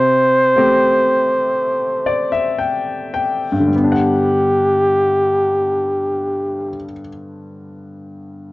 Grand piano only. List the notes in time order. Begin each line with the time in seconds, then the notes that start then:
Already playing: C3
0.56 A3 C4 G4
2.06 D5
2.32 E5
2.58 G5
3.14 G5
3.52 G2
3.60 D3
3.68 G3
3.76 B3
3.84 D4
3.92 F#5